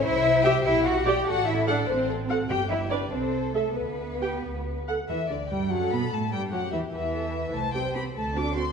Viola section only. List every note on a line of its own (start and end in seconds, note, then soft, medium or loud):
0.44 0.54 G4 medium
0.44 0.54 E5 medium
1.06 1.15 G4 medium
1.06 1.15 D5 medium
1.68 1.77 A4 medium
1.68 1.77 F#5 medium
2.29 2.39 A4 medium
2.29 2.39 F#5 medium
2.92 3.02 B4 medium
2.92 3.02 D5 medium
3.55 3.65 A4 soft
3.55 3.65 E5 soft
4.21 4.32 G4 soft
4.21 4.31 G5 soft
4.88 4.98 A4 soft
4.88 4.98 F#5 soft
5.08 5.16 E3 medium
5.30 5.38 D3 soft
5.52 5.71 G3 medium
5.72 5.92 F#3 medium
5.92 6.00 B3 medium
6.12 6.32 A3 soft
6.33 6.41 G3 medium
6.52 6.60 F#3 soft
6.72 6.80 E3 medium
6.92 7.53 E3 medium
7.74 7.81 C4 soft
7.74 7.81 G4 soft
7.95 8.02 C4 soft
7.95 8.02 G4 soft
8.36 8.43 C4 soft
8.36 8.43 F#4 soft
8.56 8.63 C4 soft
8.56 8.63 F#4 soft